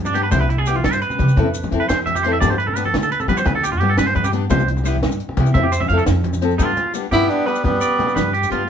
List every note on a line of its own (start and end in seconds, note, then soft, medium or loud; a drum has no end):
0.00 0.29 G2 medium
0.05 0.15 D4 medium
0.05 low conga medium
0.05 maracas medium
0.13 0.25 B3 medium
0.13 0.26 D4 medium
0.13 0.23 G4 medium
0.13 0.26 G4 medium
0.13 closed hi-hat medium
0.13 maracas soft
0.23 0.31 B4 medium
0.31 0.81 C2 medium
0.31 0.42 G3 medium
0.31 0.42 B3 medium
0.31 0.43 E4 medium
0.31 0.44 G4 medium
0.31 0.40 C5 loud
0.31 kick medium
0.31 closed hi-hat medium
0.31 high conga medium
0.31 low conga medium
0.31 maracas medium
0.41 0.49 B4 medium
0.49 0.58 E4 loud
0.49 closed hi-hat soft
0.57 0.67 G#4 medium
0.57 low conga medium
0.66 0.78 G3 medium
0.66 0.78 B3 medium
0.66 0.79 E4 medium
0.66 0.76 G4 medium
0.66 0.79 G4 medium
0.66 closed hi-hat soft
0.66 maracas loud
0.75 0.84 F4 medium
0.75 high conga medium
0.83 1.01 G2 medium
0.83 0.93 A4 medium
0.83 snare medium
0.83 closed hi-hat medium
0.83 low conga medium
0.93 1.01 C5 loud
0.93 maracas medium
1.02 1.68 B4 medium
1.02 closed hi-hat soft
1.10 low conga medium
1.10 maracas soft
1.18 1.36 C3 medium
1.18 1.30 G3 medium
1.18 1.31 G4 medium
1.18 kick medium
1.18 closed hi-hat medium
1.18 high conga medium
1.18 maracas soft
1.28 low conga soft
1.28 maracas medium
1.36 1.69 F2 medium
1.36 1.47 E3 medium
1.36 1.48 C4 medium
1.36 1.48 E4 medium
1.36 1.48 A4 medium
1.36 kick medium
1.36 closed hi-hat medium
1.36 low conga medium
1.54 closed hi-hat soft
1.54 maracas medium
1.63 high conga medium
1.63 low conga medium
1.63 maracas soft
1.71 1.88 F2 medium
1.71 1.82 E3 medium
1.71 1.83 C4 medium
1.71 1.83 E4 medium
1.71 1.84 A4 medium
1.71 closed hi-hat soft
1.80 1.88 B4 medium
1.89 2.38 F2 medium
1.89 1.97 C5 loud
1.89 snare medium
1.89 closed hi-hat medium
1.89 low conga medium
1.89 maracas medium
2.06 2.15 E5 medium
2.06 closed hi-hat soft
2.06 high conga medium
2.15 2.24 G4 medium
2.15 low conga medium
2.15 maracas medium
2.23 2.35 E3 medium
2.23 2.35 C4 medium
2.23 2.36 E4 medium
2.23 2.32 C5 loud
2.23 closed hi-hat soft
2.27 2.36 A4 medium
2.33 2.40 E5 medium
2.40 2.90 G2 medium
2.40 2.52 G3 medium
2.40 2.53 B3 medium
2.40 2.53 D4 medium
2.40 2.54 G4 medium
2.40 2.50 D5 medium
2.40 kick medium
2.40 closed hi-hat medium
2.40 high conga medium
2.40 low conga medium
2.40 maracas medium
2.50 2.58 C5 medium
2.58 2.67 B4 medium
2.58 closed hi-hat soft
2.67 2.76 A4 medium
2.67 low conga medium
2.76 2.87 G3 medium
2.76 2.87 B3 medium
2.76 2.88 D4 medium
2.76 2.88 G4 medium
2.76 2.85 B4 loud
2.76 closed hi-hat soft
2.76 maracas medium
2.85 2.94 A4 medium
2.85 high conga medium
2.94 3.10 D2 medium
2.94 snare medium
2.94 closed hi-hat medium
2.94 low conga medium
3.02 3.11 A4 medium
3.02 maracas medium
3.12 3.20 B4 medium
3.12 closed hi-hat soft
3.20 3.28 A4 medium
3.20 low conga medium
3.20 maracas soft
3.28 3.44 G3 medium
3.28 3.39 G3 medium
3.28 3.39 B3 medium
3.28 3.40 G4 medium
3.28 3.37 B4 loud
3.28 muted steel-string acoustic guitar stroke medium
3.28 closed hi-hat medium
3.28 high conga loud
3.28 maracas soft
3.37 3.46 C5 loud
3.37 maracas medium
3.46 3.80 D2 medium
3.46 3.55 B4 medium
3.46 kick medium
3.46 closed hi-hat medium
3.46 low conga loud
3.55 3.64 A4 medium
3.63 3.71 G4 medium
3.63 closed hi-hat medium
3.63 maracas medium
3.72 3.80 F4 medium
3.72 low conga medium
3.80 3.97 G2 medium
3.80 3.91 G3 medium
3.80 3.92 B3 medium
3.80 3.92 D4 medium
3.80 3.89 G4 medium
3.80 closed hi-hat soft
3.84 3.93 G4 medium
3.90 3.98 A4 medium
3.97 4.46 G2 medium
3.97 4.07 B4 loud
3.97 snare medium
3.97 closed hi-hat medium
3.97 low conga loud
3.97 maracas medium
4.07 4.15 C5 loud
4.15 4.24 B4 medium
4.15 kick medium
4.15 closed hi-hat medium
4.15 high conga loud
4.24 4.29 G4 medium
4.24 low conga medium
4.24 maracas medium
4.32 4.43 G3 medium
4.32 4.44 B3 medium
4.32 4.44 D4 medium
4.32 4.45 G4 medium
4.32 closed hi-hat medium
4.32 maracas soft
4.50 4.99 C2 medium
4.50 4.61 G3 medium
4.50 4.61 B3 medium
4.50 4.62 G4 medium
4.50 4.68 C5 medium
4.50 muted steel-string acoustic guitar stroke medium
4.50 kick medium
4.50 closed hi-hat medium
4.50 high conga loud
4.50 low conga loud
4.50 maracas medium
4.59 maracas soft
4.68 closed hi-hat soft
4.68 low conga soft
4.77 low conga medium
4.77 maracas soft
4.84 4.95 G3 medium
4.84 4.96 B3 medium
4.84 4.96 E4 medium
4.84 4.97 G4 medium
4.84 4.96 B4 medium
4.84 snare soft
4.84 closed hi-hat soft
4.84 low conga soft
4.84 maracas medium
4.95 high conga medium
5.03 5.19 G2 medium
5.03 snare medium
5.03 closed hi-hat medium
5.03 low conga medium
5.12 maracas medium
5.20 closed hi-hat soft
5.29 low conga medium
5.37 5.53 C3 medium
5.37 5.48 G3 medium
5.37 5.49 B3 medium
5.37 5.49 E4 medium
5.37 5.49 G4 medium
5.37 kick medium
5.37 closed hi-hat medium
5.37 high conga loud
5.46 low conga soft
5.46 maracas medium
5.54 5.87 F2 medium
5.54 5.66 F3 medium
5.54 5.66 C4 medium
5.54 5.67 E4 medium
5.54 5.63 E5 medium
5.54 muted steel-string acoustic guitar stroke medium
5.54 kick medium
5.54 closed hi-hat medium
5.54 low conga loud
5.63 5.72 G4 medium
5.63 low conga soft
5.72 5.81 C5 medium
5.72 closed hi-hat soft
5.72 maracas medium
5.80 5.88 E5 medium
5.80 high conga medium
5.80 low conga medium
5.89 6.06 F2 medium
5.89 6.00 F3 medium
5.89 6.01 C4 medium
5.89 6.01 E4 medium
5.89 5.98 F5 loud
5.89 closed hi-hat soft
5.89 maracas soft
5.93 6.02 A4 medium
5.97 6.03 A4 medium
5.97 low conga soft
5.97 maracas soft
6.06 6.55 F2 medium
6.06 snare medium
6.06 closed hi-hat medium
6.06 low conga medium
6.06 maracas medium
6.15 low conga soft
6.24 closed hi-hat medium
6.24 high conga medium
6.33 low conga medium
6.33 maracas medium
6.41 6.52 F3 medium
6.41 6.53 C4 medium
6.41 6.54 A4 medium
6.41 muted steel-string acoustic guitar stroke medium
6.41 closed hi-hat medium
6.51 maracas soft
6.58 6.75 G2 medium
6.58 6.69 G3 medium
6.58 6.70 B3 medium
6.58 6.70 D4 medium
6.58 6.92 F4 medium
6.58 6.71 G4 medium
6.58 kick medium
6.58 closed hi-hat medium
6.58 high conga medium
6.58 maracas medium
6.68 low conga soft
6.77 closed hi-hat soft
6.77 low conga medium
6.94 7.04 G3 medium
6.94 7.05 B3 medium
6.94 7.06 D4 medium
6.94 7.06 G4 medium
6.94 closed hi-hat soft
6.94 maracas medium
7.11 7.28 G2 medium
7.11 7.30 B3 medium
7.11 7.31 E4 loud
7.11 7.45 G4 medium
7.11 snare medium
7.11 closed hi-hat medium
7.11 high conga medium
7.11 maracas soft
7.21 low conga medium
7.30 7.50 B3 medium
7.30 7.48 D4 medium
7.30 closed hi-hat soft
7.39 low conga soft
7.46 7.57 G3 medium
7.46 7.64 G3 medium
7.46 7.57 B3 medium
7.46 7.64 B3 medium
7.46 7.58 D4 medium
7.46 7.58 G4 medium
7.46 7.80 B4 medium
7.46 closed hi-hat soft
7.55 maracas medium
7.64 7.80 G2 medium
7.64 8.30 G3 medium
7.64 8.30 B3 medium
7.64 kick medium
7.64 closed hi-hat medium
7.64 high conga medium
7.64 low conga medium
7.81 8.15 D5 medium
7.81 closed hi-hat soft
7.81 maracas medium
7.97 8.09 G3 medium
7.97 8.09 B3 medium
7.97 8.10 D4 medium
7.97 8.10 G4 medium
7.97 closed hi-hat soft
7.97 low conga medium
8.09 maracas soft
8.16 8.48 G2 medium
8.16 8.33 B4 medium
8.16 snare medium
8.16 closed hi-hat medium
8.16 high conga medium
8.16 maracas medium
8.33 8.50 G4 medium
8.33 closed hi-hat soft
8.33 maracas soft
8.43 low conga medium
8.43 maracas medium
8.50 8.67 G2 medium
8.50 8.61 G3 medium
8.50 8.62 B3 medium
8.50 8.62 D4 medium
8.50 8.69 F4 medium
8.50 8.63 G4 medium
8.50 closed hi-hat soft
8.50 low conga soft
8.50 maracas soft